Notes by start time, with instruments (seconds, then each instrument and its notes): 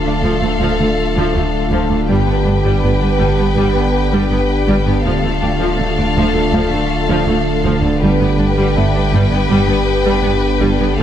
Already playing: sub bass D1, trombone section D3 A3, ambient pad A3 F4 A4 D5, french horn section D4 F4, violin section A4 F5, grand piano D6
0.05 cello section D2, viola section D4
0.23 cello section D2, double bass section D2, viola section F3
0.42 cello section D2, viola section A3
0.60 cello section D2, double bass section D2, viola section F3
0.79 cello section D2, viola section A3
1.15 cello section D2, viola section F3
1.34 cello section D2, double bass section D2, viola section A3
1.71 cello section D2, double bass section D2, viola section F3
1.89 cello section D2, viola section A3
2.08 sub bass G1, double bass section G1, cello section G2, viola section G3, trombone section B3, ambient pad B3 D4 G4, french horn section G4, violin section B4 G5
2.27 cello section G2, viola section B3
2.45 double bass section G1, cello section G2, viola section D4
2.64 cello section G2, viola section G3
2.82 double bass section G1, cello section G2, viola section B3, grand piano B4 B5
3.00 cello section G2, viola section D4
3.19 double bass section G1, cello section G2, viola section G3
3.38 cello section G2, viola section B3
3.57 double bass section G1, cello section G2, viola section G3
3.75 cello section G2, viola section B3
4.12 cello section G2, viola section G3
4.30 double bass section G1, cello section G2, viola section B3
4.68 double bass section G1, cello section G2, viola section G3
4.86 cello section G2, viola section B3
5.04 sub bass D1, cello section D2, double bass section D2, trombone section D3 A3, viola section F3, ambient pad A3 F4 D5, french horn section D4 F4, violin section A4 F5
5.23 cello section D2, viola section A3
5.42 cello section D2, double bass section D2, viola section D4, grand piano G5
5.60 cello section D2, viola section F3
5.79 cello section D2, double bass section D2, viola section A3
5.97 cello section D2, viola section D4
6.15 cello section D2, double bass section D2, viola section F3
6.34 cello section D2, viola section A3
6.52 cello section D2, double bass section D2, viola section F3
6.72 cello section D2, viola section A3
7.08 cello section D2, viola section F3
7.27 cello section D2, double bass section D2, viola section A3
7.64 cello section D2, double bass section D2, viola section F3
7.82 cello section D2, viola section A3
8.01 double bass section G1, sub bass G1, cello section G2, viola section G3, ambient pad B3 D4 G4, trombone section B3, french horn section G4, violin section B4 G5
8.20 cello section G2, viola section B3
8.38 double bass section G1, cello section G2, viola section D4
8.56 cello section G2, viola section G3
8.75 double bass section G1, cello section G2, viola section B3, grand piano E5
8.94 cello section G2, viola section D4
9.13 double bass section G1, cello section G2, viola section G3
9.30 cello section G2, viola section B3
9.49 double bass section G1, cello section G2, viola section G3
9.67 cello section G2, viola section B3
10.05 cello section G2, viola section G3
10.24 double bass section G1, cello section G2, viola section B3
10.60 double bass section G1, cello section G2, viola section G3
10.79 cello section G2, viola section B3
10.97 sub bass D1, double bass section D2, cello section D2, trombone section D3 A3, viola section F3, ambient pad A3 F4 D5, french horn section D4 F4, violin section A4 F5